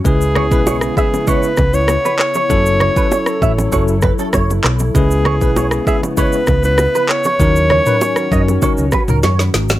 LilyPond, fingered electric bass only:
\new Staff \with { instrumentName = "Fingered electric bass" } { \clef bass \time 4/4 \key cis \minor \tempo 4 = 98 cis,8. b,,8. r4 cis,8. r8. | fis,,8. r8. a,,8 fis,,8. r16 fis,,8 b,,8 | cis,8. b,,8. r4 cis,8. r8. | dis,8. r8. fis,8 r16 cis,16 r16 cis,16 fis,8 gis,,8 | }